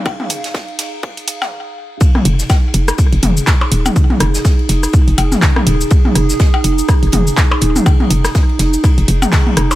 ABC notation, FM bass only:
X:1
M:4/4
L:1/16
Q:"Swing 16ths" 1/4=123
K:Fm
V:1 name="FM bass" clef=bass
z16 | z2 F,,, z3 F,,, z2 F,,, F,,, z3 E,,, z | z2 F,,, z3 F,,, z2 F,,, F,,, z3 E,,, z | z2 F,,, z3 F,,, z2 F,,, F,,, z3 E,,, z |
z2 F,,, z3 F,,, z2 F,,, F,,, z3 F,,, z |]